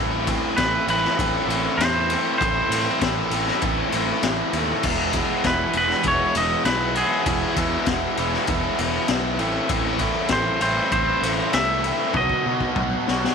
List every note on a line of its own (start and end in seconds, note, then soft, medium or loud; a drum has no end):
0.00 0.34 A1 medium
0.00 0.27 A2 loud
0.00 0.27 E3 loud
0.00 0.28 A3 loud
0.00 0.29 C4 loud
0.00 0.29 E4 loud
0.27 0.57 A2 medium
0.27 0.57 E3 medium
0.27 0.58 A3 loud
0.27 0.58 C4 loud
0.27 0.58 E4 medium
0.27 kick medium
0.27 ride medium
0.57 0.76 A1 medium
0.57 0.87 A2 medium
0.57 0.88 E3 loud
0.57 0.88 A3 loud
0.57 0.89 C4 loud
0.57 0.89 E4 loud
0.57 0.86 B4 loud
0.57 kick medium
0.57 snare loud
0.57 ride loud
0.87 1.06 A1 medium
0.87 1.16 A2 medium
0.87 1.18 E3 loud
0.87 1.17 A3 medium
0.87 1.18 C4 medium
0.87 1.19 E4 medium
0.87 1.46 B4 loud
0.87 ride medium
1.04 snare soft
1.18 1.37 A1 medium
1.18 1.48 A2 loud
1.18 1.48 E3 loud
1.18 1.49 A3 loud
1.18 1.48 C4 loud
1.18 1.50 E4 loud
1.18 kick loud
1.18 ride loud
1.47 1.66 A1 loud
1.47 1.78 A2 medium
1.47 1.79 E3 loud
1.47 1.78 A3 medium
1.47 1.79 C4 medium
1.47 1.80 E4 loud
1.47 ride medium
1.78 2.15 E2 loud
1.78 2.09 A2 loud
1.78 2.10 E3 medium
1.78 2.10 A3 loud
1.78 2.10 C4 loud
1.78 2.12 E4 loud
1.78 2.37 C5 loud
1.78 snare loud
1.78 ride loud
2.10 2.38 A2 medium
2.10 2.39 E3 medium
2.10 2.39 A3 medium
2.10 2.40 C4 medium
2.10 2.41 E4 medium
2.10 ride medium
2.38 2.59 A1 medium
2.38 2.71 A2 loud
2.38 2.72 E3 loud
2.38 2.72 A3 loud
2.38 2.72 C4 loud
2.38 2.74 E4 loud
2.38 3.57 C5 loud
2.38 kick loud
2.38 ride loud
2.69 2.88 A2 loud
2.69 3.01 A2 medium
2.69 3.02 E3 medium
2.69 3.01 A3 medium
2.69 ride medium
2.73 3.02 C4 medium
2.73 3.03 E4 medium
3.01 3.20 A1 medium
3.01 3.31 A2 medium
3.01 3.33 E3 loud
3.01 3.33 A3 loud
3.01 3.32 C4 loud
3.01 3.34 E4 loud
3.01 kick medium
3.01 snare loud
3.01 ride loud
3.30 3.49 A1 medium
3.30 3.62 A2 medium
3.30 3.63 E3 medium
3.30 3.63 C4 medium
3.30 ride medium
3.34 3.63 A3 medium
3.34 3.64 E4 loud
3.48 snare soft
3.62 3.81 A1 medium
3.62 3.93 A2 loud
3.62 3.95 E3 loud
3.62 3.94 A3 loud
3.62 3.94 C4 loud
3.62 3.96 E4 loud
3.62 kick loud
3.62 ride loud
3.92 4.11 A1 medium
3.92 4.24 A2 medium
3.92 4.25 E3 medium
3.92 4.25 A3 loud
3.92 4.25 C4 medium
3.92 ride medium
3.97 4.27 E4 loud
4.23 4.41 A1 loud
4.23 4.55 A2 loud
4.23 4.56 E3 medium
4.23 4.56 A3 medium
4.23 4.57 C4 medium
4.23 snare loud
4.23 ride loud
4.27 4.58 E4 loud
4.53 4.71 D#2 medium
4.53 4.83 A2 medium
4.53 4.85 E3 medium
4.53 ride medium
4.57 4.84 A3 medium
4.57 4.84 C4 medium
4.57 4.86 E4 medium
4.83 5.20 E1 loud
4.83 5.15 E2 medium
4.83 5.14 B2 loud
4.83 5.15 E3 loud
4.83 5.16 G#3 loud
4.83 5.16 B3 loud
4.83 5.17 E4 loud
4.83 kick loud
4.83 crash loud
5.13 5.46 E2 medium
5.13 5.45 B2 medium
5.13 5.46 E3 medium
5.13 5.48 G#3 loud
5.13 5.47 B3 loud
5.13 kick medium
5.13 ride medium
5.17 5.48 E4 loud
5.44 5.63 E1 loud
5.44 5.75 E2 loud
5.44 5.75 B2 loud
5.44 5.77 E3 loud
5.44 5.77 B3 loud
5.44 5.74 B4 medium
5.44 kick medium
5.44 snare loud
5.44 ride medium
5.48 5.76 G#3 loud
5.48 5.78 E4 loud
5.73 5.92 E1 medium
5.73 6.05 E2 medium
5.73 6.06 B2 medium
5.73 6.07 E3 medium
5.73 ride medium
5.77 6.06 G#3 loud
5.77 6.07 B3 medium
5.77 6.09 E4 medium
5.77 6.07 B4 loud
5.90 snare soft
6.03 6.23 E1 medium
6.03 6.36 E2 medium
6.03 6.37 B2 medium
6.03 6.38 E3 loud
6.03 kick loud
6.03 ride loud
6.08 6.38 G#3 loud
6.08 6.39 B3 loud
6.08 6.40 E4 loud
6.08 6.37 C#5 loud
6.35 6.54 E1 loud
6.35 6.66 E2 medium
6.35 6.66 B2 medium
6.35 6.65 D#5 medium
6.35 ride medium
6.39 6.68 E3 medium
6.39 6.67 G#3 medium
6.39 6.67 B3 loud
6.39 6.68 E4 loud
6.65 7.02 B1 loud
6.65 6.94 E2 medium
6.65 6.95 B2 medium
6.65 6.96 E3 loud
6.65 6.96 G#3 loud
6.65 6.97 E4 loud
6.65 6.94 B4 loud
6.65 snare loud
6.65 ride loud
6.69 6.96 B3 medium
6.95 7.24 E2 medium
6.95 7.25 B2 medium
6.95 7.26 E3 medium
6.95 7.26 G#3 medium
6.95 7.26 B3 medium
6.95 7.28 E4 medium
6.95 7.54 G#4 medium
6.95 ride medium
7.25 7.44 E1 loud
7.25 7.55 E2 medium
7.25 7.55 B2 medium
7.25 7.57 E3 loud
7.25 7.56 G#3 loud
7.25 7.57 B3 loud
7.25 7.57 E4 loud
7.25 kick loud
7.25 ride loud
7.56 7.75 E2 medium
7.56 7.86 E2 medium
7.56 7.86 B2 medium
7.56 7.87 E3 medium
7.56 7.87 G#3 medium
7.56 7.87 B3 medium
7.56 7.89 E4 loud
7.56 kick medium
7.56 ride medium
7.86 8.05 E1 loud
7.86 8.16 E2 loud
7.86 8.16 B2 loud
7.86 8.17 E3 loud
7.86 8.17 G#3 loud
7.86 8.17 B3 loud
7.86 8.19 E4 loud
7.86 kick medium
7.86 snare loud
7.86 ride loud
8.17 8.36 E1 medium
8.17 8.46 E2 medium
8.17 8.46 B2 medium
8.17 8.46 E3 loud
8.17 8.47 G#3 medium
8.17 8.47 B3 medium
8.17 8.49 E4 loud
8.17 ride medium
8.34 snare soft
8.47 8.67 E1 medium
8.47 8.77 E2 loud
8.47 8.77 B2 medium
8.47 8.78 E3 loud
8.47 8.78 G#3 loud
8.47 8.79 B3 loud
8.47 8.79 E4 loud
8.47 kick loud
8.47 ride loud
8.78 8.97 E1 loud
8.78 9.07 E2 medium
8.78 9.07 B2 medium
8.78 9.08 E3 loud
8.78 9.08 G#3 medium
8.78 9.08 B3 medium
8.78 9.09 E4 medium
8.78 ride medium
9.08 9.40 B1 loud
9.08 9.38 E2 loud
9.08 9.37 B2 medium
9.08 9.38 E3 medium
9.08 9.38 G#3 medium
9.08 9.38 B3 loud
9.08 9.39 E4 loud
9.08 snare loud
9.08 ride loud
9.39 9.58 A1 medium
9.39 9.68 A2 medium
9.39 9.68 E3 medium
9.39 9.69 A3 medium
9.39 9.70 C4 loud
9.39 9.70 E4 medium
9.39 ride medium
9.69 10.06 A1 loud
9.69 9.96 A2 medium
9.69 9.98 E3 medium
9.69 9.98 A3 loud
9.69 9.98 C4 loud
9.69 9.99 E4 loud
9.69 kick loud
9.69 ride loud
9.97 10.28 A2 medium
9.97 10.29 E3 medium
9.97 10.29 A3 loud
9.97 10.30 C4 medium
9.97 10.31 E4 loud
9.97 kick medium
9.97 ride medium
10.29 10.49 A1 loud
10.29 10.59 A2 loud
10.29 10.60 E3 loud
10.29 10.60 A3 loud
10.29 10.61 C4 loud
10.29 10.61 E4 loud
10.29 10.61 C5 medium
10.29 kick medium
10.29 snare loud
10.29 ride loud
10.60 10.79 A1 medium
10.60 10.90 A2 loud
10.60 10.91 E3 loud
10.60 10.91 A3 medium
10.60 10.92 C4 loud
10.60 10.92 E4 medium
10.60 10.91 C5 medium
10.60 ride medium
10.91 11.11 A1 medium
10.91 11.22 A2 loud
10.91 11.22 E3 loud
10.91 11.23 A3 loud
10.91 11.23 C4 loud
10.91 11.24 E4 loud
10.91 11.53 C5 loud
10.91 kick loud
10.91 ride loud
11.21 11.40 A1 medium
11.21 11.51 A2 medium
11.21 11.52 E3 medium
11.21 11.52 A3 loud
11.21 11.52 C4 loud
11.21 11.53 E4 medium
11.21 ride medium
11.52 11.90 C2 loud
11.52 11.81 A2 medium
11.52 11.82 E3 loud
11.52 11.82 A3 loud
11.52 11.83 C4 loud
11.52 11.84 E4 medium
11.52 12.11 E5 loud
11.52 snare loud
11.52 ride loud
11.83 12.12 A2 medium
11.83 12.12 E3 medium
11.83 12.12 A3 medium
11.83 12.13 C4 medium
11.83 12.13 E4 loud
11.83 ride medium
12.13 12.33 B1 loud
12.13 12.44 B2 medium
12.13 12.45 F#3 loud
12.13 12.45 B3 loud
12.13 12.46 D#4 loud
12.13 12.46 F#4 loud
12.13 13.35 D#5 medium
12.13 kick loud
12.13 high tom medium
12.29 kick medium
12.45 12.75 B2 loud
12.45 12.64 B2 medium
12.45 12.76 F#3 loud
12.45 12.76 B3 loud
12.45 12.76 D#4 loud
12.45 12.77 F#4 medium
12.60 kick medium
12.76 12.94 B1 loud
12.76 13.05 B2 medium
12.76 13.06 F#3 loud
12.76 13.06 B3 loud
12.76 13.07 D#4 loud
12.76 13.07 F#4 loud
12.76 kick loud
12.76 mid tom medium
13.06 13.26 B1 medium
13.06 13.35 B2 medium
13.06 13.35 F#3 medium
13.06 13.35 B3 medium
13.06 13.35 D#4 medium
13.06 13.35 F#4 loud
13.06 snare medium
13.24 snare medium